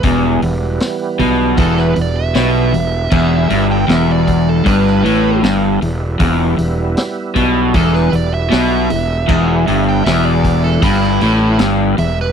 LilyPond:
<<
  \new Staff \with { instrumentName = "Lead electric guitar" } { \time 4/4 \key e \minor \tempo 4 = 78 r2 a'16 b'16 d''16 e''4~ e''16~ | e''8. g''16 e''16 d''8 a'16 b'4 r4 | r2 a'16 b'16 d''16 e''4~ e''16~ | e''8. g''16 e''16 d''8 a'16 e'4 r8 e''16 b'16 | }
  \new Staff \with { instrumentName = "Tonewheel organ" } { \time 4/4 \key e \minor <e g b>1 | \tuplet 3/2 { <gis c' f'>8 <g b e'>4~ } <g b e'>2. | \tuplet 3/2 { <gis c' f'>8 <g b e'>4~ } <g b e'>2. | \tuplet 3/2 { <gis f' c''>8 <g e' b'>4~ } <g e' b'>2. | }
  \new Staff \with { instrumentName = "Overdriven electric guitar" } { \clef bass \time 4/4 \key e \minor e,8 e,8 r8 b,8 e,8 e,8 b,8 e,8 | e,8 g,8 e,4 g,8 a,8 g,8 e,8 | e,8 e,8 r8 b,8 e,8 e,8 b,8 e,8 | e,8 g,8 e,4 g,8 a,8 g,8 e,8 | }
  \new Staff \with { instrumentName = "Fingered electric bass" } { \clef bass \time 4/4 \key e \minor e,,8 e,,8 r8 b,,8 e,,8 e,,8 b,,8 e,,8 | e,,8 g,,8 e,,4 g,,8 a,,8 g,,8 e,,8 | e,,8 e,,8 r8 b,,8 e,,8 e,,8 b,,8 e,,8 | e,,8 g,,8 e,,4 g,,8 a,,8 g,,8 e,,8 | }
  \new DrumStaff \with { instrumentName = "Drums" } \drummode { \time 4/4 <hho bd>8 hho8 <hho sn>8 <hho bd>8 <hho bd>16 sn16 hho8 <hho sn>8 hho8 | <cymc bd>8 hho8 <hho sn>8 <hho bd>8 <hho bd>16 sn16 hho8 <hho sn>8 hho8 | <hho bd>8 hho8 <hho sn>8 <hho bd>8 <hho bd>16 sn16 hho8 <hho sn>8 hho8 | <cymc bd>8 hho8 <hho sn>8 <hho bd>8 <hho bd>16 sn16 hho8 <hho sn>8 hho8 | }
>>